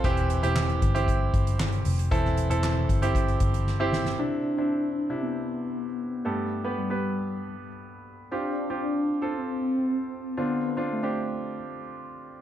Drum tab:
HH |xxxx-xxxx-xx-xox|x-xx--xxxxxx----|----------------|----------------|
CP |----x-------x---|----x-----------|----------------|----------------|
SD |----o-------o---|-o--o-------o-oo|----------------|----------------|
BD |o-----o-o-o-----|o-----o-o-o-----|----------------|----------------|

HH |----------------|----------------|
CP |----------------|----------------|
SD |----------------|----------------|
BD |----------------|----------------|